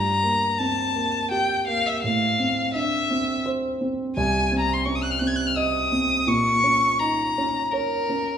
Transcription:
0.00 2.00 G2 soft
0.00 0.59 A#5 medium
0.23 0.81 A#3 soft
0.58 0.96 C4 soft
0.58 1.30 A5 medium
0.96 1.54 A#3 soft
1.31 1.90 G4 soft
1.31 1.67 G5 medium
1.67 2.04 A#3 soft
1.67 1.88 F5 medium
1.86 2.02 E5 medium
2.03 4.12 A2 medium
2.03 2.73 F5 medium
2.40 2.96 C4 soft
2.74 3.11 D4 soft
2.74 3.44 E5 medium
3.11 3.67 C4 soft
3.46 4.02 C5 soft
3.81 4.16 C4 soft
4.16 6.24 C2 medium
4.16 4.55 G#5 medium
4.52 5.08 C4 soft
4.59 4.75 A#5 medium
4.73 4.87 C6 medium
4.85 5.21 C#4 soft
4.85 4.97 C#6 medium
4.96 5.04 D#6 medium
5.03 5.12 F#6 medium
5.11 5.20 F6 medium
5.19 5.78 C4 soft
5.19 5.29 F#6 medium
5.27 5.38 G#6 medium
5.36 5.49 F#6 medium
5.47 5.58 F6 medium
5.57 6.13 D#5 medium
5.57 6.29 D#6 medium
5.92 6.28 C4 soft
6.27 8.38 A#2 medium
6.27 7.01 C#6 medium
6.64 7.22 C#4 soft
6.99 7.36 D#4 soft
6.99 7.73 A#5 medium
7.38 7.95 C#4 soft
7.72 8.38 A#4 medium
7.72 8.30 C#5 soft
8.09 8.38 C#4 soft

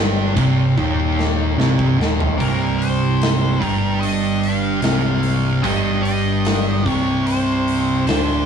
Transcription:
0.00 0.33 G1 loud
0.00 0.36 G2 loud
0.00 0.36 G3 loud
0.36 0.74 C1 medium
0.36 0.76 C2 loud
0.36 0.76 C3 medium
0.36 kick loud
0.36 ride medium
0.77 1.55 D#1 medium
0.77 1.57 D#2 medium
0.77 1.58 D#3 loud
0.77 kick medium
1.19 snare medium
1.57 1.96 C1 medium
1.57 1.97 C2 medium
1.57 1.98 C3 loud
1.57 snare medium
1.79 kick medium
1.97 2.36 D#1 loud
1.97 2.37 D#2 medium
1.97 2.38 D#3 loud
2.01 snare loud
2.20 floor tom loud
2.37 3.58 C1 medium
2.37 3.59 C2 medium
2.37 3.60 C3 loud
2.37 2.76 A#4 loud
2.37 kick medium
2.37 open hi-hat medium
2.78 3.65 C5 loud
2.78 open hi-hat medium
3.22 snare loud
3.22 open hi-hat medium
3.60 4.80 G1 medium
3.60 4.81 G2 medium
3.60 4.82 G3 loud
3.60 kick loud
3.60 open hi-hat medium
3.65 4.00 A#4 loud
4.00 4.39 D#5 loud
4.00 open hi-hat medium
4.40 5.67 F5 loud
4.40 open hi-hat medium
4.82 5.60 C1 medium
4.82 5.62 C2 medium
4.82 5.63 C3 loud
4.82 snare loud
4.82 open hi-hat medium
5.23 open hi-hat medium
5.63 6.82 G1 loud
5.63 6.84 G2 loud
5.63 6.84 G3 loud
5.63 6.02 D#5 loud
5.63 kick loud
5.63 open hi-hat medium
6.03 6.90 D#5 loud
6.03 open hi-hat medium
6.45 snare loud
6.45 open hi-hat medium
6.84 8.04 C1 medium
6.84 8.06 C2 medium
6.84 8.06 C3 loud
6.84 kick loud
6.84 open hi-hat medium
6.90 7.30 C#5 loud
7.26 8.04 C5 loud
7.26 open hi-hat medium
7.68 open hi-hat medium
8.07 8.46 D1 medium
8.07 8.46 D2 loud
8.07 8.46 D3 loud
8.07 8.46 C5 medium
8.07 snare loud
8.07 open hi-hat medium

